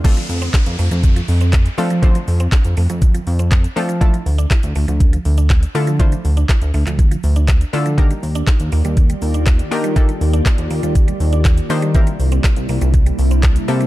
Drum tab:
CC |x---------------|----------------|----------------|----------------|
HH |xxoxxxoxxxoxxxox|xxoxxxoxxxoxxxox|xxoxxxoxxxoxxxox|xxoxxxoxxxoxxxox|
SH |xxxxxxxxxxxxxxxx|xxxxxxxxxxxxxxxx|xxxxxxxxxxxxxxxx|xxxxxxxxxxxxxxxx|
CP |----x-------x---|----x-------x---|----x-------x---|----x--x----x---|
SD |----o-------o---|----o-------o---|----o-------o---|----o-------o---|
BD |o---o---o---o---|o---o---o---o---|o---o---o---o---|o---o---o---o---|

CC |----------------|----------------|----------------|
HH |xxoxxxoxxxoxxxox|xxoxxxoxxxoxxxox|xxoxxxoxxxoxxxox|
SH |xxxxxxxxxxxxxxxx|xxxxxxxxxxxxxxxx|xxxxxxxxxxxxxxxx|
CP |----x-------x---|----x-------x---|----x-------x---|
SD |----o-------o---|----o-------o---|----o-------o---|
BD |o---o---o---o---|o---o---o---o---|o---o---o---o---|